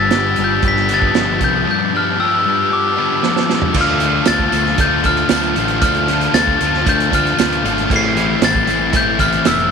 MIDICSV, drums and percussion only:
0, 0, Header, 1, 2, 480
1, 0, Start_track
1, 0, Tempo, 519031
1, 1554, Time_signature, 4, 2, 24, 8
1, 8983, End_track
2, 0, Start_track
2, 0, Title_t, "Drums"
2, 99, Note_on_c, 9, 42, 60
2, 102, Note_on_c, 9, 38, 92
2, 191, Note_off_c, 9, 42, 0
2, 195, Note_off_c, 9, 38, 0
2, 332, Note_on_c, 9, 42, 60
2, 425, Note_off_c, 9, 42, 0
2, 577, Note_on_c, 9, 42, 76
2, 582, Note_on_c, 9, 36, 116
2, 670, Note_off_c, 9, 42, 0
2, 674, Note_off_c, 9, 36, 0
2, 704, Note_on_c, 9, 38, 30
2, 796, Note_off_c, 9, 38, 0
2, 820, Note_on_c, 9, 42, 68
2, 913, Note_off_c, 9, 42, 0
2, 941, Note_on_c, 9, 36, 88
2, 1034, Note_off_c, 9, 36, 0
2, 1061, Note_on_c, 9, 42, 70
2, 1065, Note_on_c, 9, 38, 107
2, 1153, Note_off_c, 9, 42, 0
2, 1157, Note_off_c, 9, 38, 0
2, 1300, Note_on_c, 9, 42, 61
2, 1302, Note_on_c, 9, 36, 77
2, 1393, Note_off_c, 9, 42, 0
2, 1395, Note_off_c, 9, 36, 0
2, 2987, Note_on_c, 9, 38, 60
2, 3079, Note_off_c, 9, 38, 0
2, 3112, Note_on_c, 9, 38, 71
2, 3204, Note_off_c, 9, 38, 0
2, 3233, Note_on_c, 9, 38, 88
2, 3325, Note_off_c, 9, 38, 0
2, 3344, Note_on_c, 9, 43, 88
2, 3437, Note_off_c, 9, 43, 0
2, 3459, Note_on_c, 9, 54, 62
2, 3463, Note_on_c, 9, 49, 107
2, 3464, Note_on_c, 9, 36, 106
2, 3552, Note_off_c, 9, 54, 0
2, 3555, Note_off_c, 9, 49, 0
2, 3556, Note_off_c, 9, 36, 0
2, 3698, Note_on_c, 9, 42, 80
2, 3704, Note_on_c, 9, 54, 28
2, 3790, Note_off_c, 9, 42, 0
2, 3796, Note_off_c, 9, 54, 0
2, 3935, Note_on_c, 9, 42, 104
2, 3935, Note_on_c, 9, 54, 101
2, 3939, Note_on_c, 9, 38, 115
2, 4027, Note_off_c, 9, 54, 0
2, 4028, Note_off_c, 9, 42, 0
2, 4031, Note_off_c, 9, 38, 0
2, 4062, Note_on_c, 9, 36, 85
2, 4154, Note_off_c, 9, 36, 0
2, 4183, Note_on_c, 9, 54, 76
2, 4186, Note_on_c, 9, 42, 77
2, 4275, Note_off_c, 9, 54, 0
2, 4278, Note_off_c, 9, 42, 0
2, 4308, Note_on_c, 9, 38, 30
2, 4401, Note_off_c, 9, 38, 0
2, 4419, Note_on_c, 9, 42, 104
2, 4423, Note_on_c, 9, 36, 120
2, 4436, Note_on_c, 9, 54, 29
2, 4512, Note_off_c, 9, 42, 0
2, 4516, Note_off_c, 9, 36, 0
2, 4529, Note_off_c, 9, 54, 0
2, 4658, Note_on_c, 9, 42, 73
2, 4662, Note_on_c, 9, 36, 82
2, 4667, Note_on_c, 9, 54, 70
2, 4750, Note_off_c, 9, 42, 0
2, 4755, Note_off_c, 9, 36, 0
2, 4760, Note_off_c, 9, 54, 0
2, 4781, Note_on_c, 9, 42, 46
2, 4874, Note_off_c, 9, 42, 0
2, 4892, Note_on_c, 9, 42, 105
2, 4896, Note_on_c, 9, 38, 118
2, 4912, Note_on_c, 9, 54, 103
2, 4984, Note_off_c, 9, 42, 0
2, 4988, Note_off_c, 9, 38, 0
2, 5005, Note_off_c, 9, 54, 0
2, 5023, Note_on_c, 9, 42, 42
2, 5116, Note_off_c, 9, 42, 0
2, 5141, Note_on_c, 9, 42, 76
2, 5158, Note_on_c, 9, 54, 72
2, 5233, Note_off_c, 9, 42, 0
2, 5250, Note_off_c, 9, 54, 0
2, 5252, Note_on_c, 9, 42, 48
2, 5345, Note_off_c, 9, 42, 0
2, 5378, Note_on_c, 9, 42, 94
2, 5382, Note_on_c, 9, 36, 112
2, 5399, Note_on_c, 9, 54, 64
2, 5471, Note_off_c, 9, 42, 0
2, 5474, Note_off_c, 9, 36, 0
2, 5491, Note_off_c, 9, 54, 0
2, 5499, Note_on_c, 9, 42, 44
2, 5591, Note_off_c, 9, 42, 0
2, 5625, Note_on_c, 9, 42, 65
2, 5641, Note_on_c, 9, 54, 27
2, 5717, Note_off_c, 9, 42, 0
2, 5734, Note_off_c, 9, 54, 0
2, 5744, Note_on_c, 9, 42, 50
2, 5837, Note_off_c, 9, 42, 0
2, 5864, Note_on_c, 9, 42, 94
2, 5867, Note_on_c, 9, 38, 105
2, 5876, Note_on_c, 9, 54, 104
2, 5956, Note_off_c, 9, 42, 0
2, 5960, Note_off_c, 9, 38, 0
2, 5969, Note_off_c, 9, 54, 0
2, 5986, Note_on_c, 9, 36, 82
2, 6078, Note_off_c, 9, 36, 0
2, 6110, Note_on_c, 9, 42, 69
2, 6117, Note_on_c, 9, 54, 71
2, 6202, Note_off_c, 9, 42, 0
2, 6209, Note_off_c, 9, 54, 0
2, 6230, Note_on_c, 9, 38, 30
2, 6323, Note_off_c, 9, 38, 0
2, 6349, Note_on_c, 9, 36, 123
2, 6349, Note_on_c, 9, 42, 109
2, 6366, Note_on_c, 9, 54, 29
2, 6442, Note_off_c, 9, 36, 0
2, 6442, Note_off_c, 9, 42, 0
2, 6459, Note_off_c, 9, 54, 0
2, 6477, Note_on_c, 9, 42, 53
2, 6570, Note_off_c, 9, 42, 0
2, 6590, Note_on_c, 9, 36, 80
2, 6595, Note_on_c, 9, 42, 70
2, 6596, Note_on_c, 9, 54, 78
2, 6682, Note_off_c, 9, 36, 0
2, 6688, Note_off_c, 9, 42, 0
2, 6688, Note_off_c, 9, 54, 0
2, 6720, Note_on_c, 9, 42, 54
2, 6812, Note_off_c, 9, 42, 0
2, 6830, Note_on_c, 9, 54, 101
2, 6838, Note_on_c, 9, 42, 111
2, 6842, Note_on_c, 9, 38, 127
2, 6922, Note_off_c, 9, 54, 0
2, 6931, Note_off_c, 9, 42, 0
2, 6934, Note_off_c, 9, 38, 0
2, 6959, Note_on_c, 9, 42, 52
2, 7052, Note_off_c, 9, 42, 0
2, 7080, Note_on_c, 9, 42, 78
2, 7080, Note_on_c, 9, 54, 78
2, 7172, Note_off_c, 9, 42, 0
2, 7172, Note_off_c, 9, 54, 0
2, 7195, Note_on_c, 9, 42, 46
2, 7288, Note_off_c, 9, 42, 0
2, 7308, Note_on_c, 9, 36, 112
2, 7314, Note_on_c, 9, 57, 96
2, 7320, Note_on_c, 9, 54, 73
2, 7400, Note_off_c, 9, 36, 0
2, 7407, Note_off_c, 9, 57, 0
2, 7413, Note_off_c, 9, 54, 0
2, 7553, Note_on_c, 9, 42, 75
2, 7566, Note_on_c, 9, 54, 33
2, 7645, Note_off_c, 9, 42, 0
2, 7658, Note_off_c, 9, 54, 0
2, 7785, Note_on_c, 9, 42, 100
2, 7788, Note_on_c, 9, 38, 114
2, 7800, Note_on_c, 9, 54, 102
2, 7877, Note_off_c, 9, 42, 0
2, 7881, Note_off_c, 9, 38, 0
2, 7892, Note_off_c, 9, 54, 0
2, 7906, Note_on_c, 9, 36, 91
2, 7998, Note_off_c, 9, 36, 0
2, 8020, Note_on_c, 9, 42, 79
2, 8047, Note_on_c, 9, 54, 77
2, 8112, Note_off_c, 9, 42, 0
2, 8140, Note_off_c, 9, 54, 0
2, 8259, Note_on_c, 9, 42, 110
2, 8262, Note_on_c, 9, 36, 121
2, 8278, Note_on_c, 9, 54, 27
2, 8351, Note_off_c, 9, 42, 0
2, 8355, Note_off_c, 9, 36, 0
2, 8370, Note_off_c, 9, 54, 0
2, 8500, Note_on_c, 9, 42, 67
2, 8502, Note_on_c, 9, 36, 80
2, 8515, Note_on_c, 9, 54, 76
2, 8593, Note_off_c, 9, 42, 0
2, 8595, Note_off_c, 9, 36, 0
2, 8607, Note_off_c, 9, 54, 0
2, 8624, Note_on_c, 9, 42, 45
2, 8716, Note_off_c, 9, 42, 0
2, 8741, Note_on_c, 9, 42, 107
2, 8744, Note_on_c, 9, 38, 109
2, 8752, Note_on_c, 9, 54, 104
2, 8833, Note_off_c, 9, 42, 0
2, 8837, Note_off_c, 9, 38, 0
2, 8845, Note_off_c, 9, 54, 0
2, 8866, Note_on_c, 9, 42, 51
2, 8958, Note_off_c, 9, 42, 0
2, 8983, End_track
0, 0, End_of_file